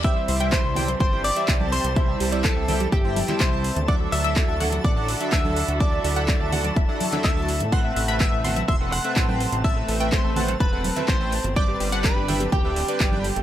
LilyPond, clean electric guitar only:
\new Staff \with { instrumentName = "Clean electric guitar" } { \time 4/4 \key c \lydian \tempo 4 = 125 e''4 c''4 c''8 d''4 c''8~ | c''4 a'4 g'4 c''4 | d''8 e''4. d''4 e''4 | d''2 r4 e''4 |
fis''4 e''4 e''8 fis''4. | e''4 c''4 b'4 c''4 | d''4 b'4 g'2 | }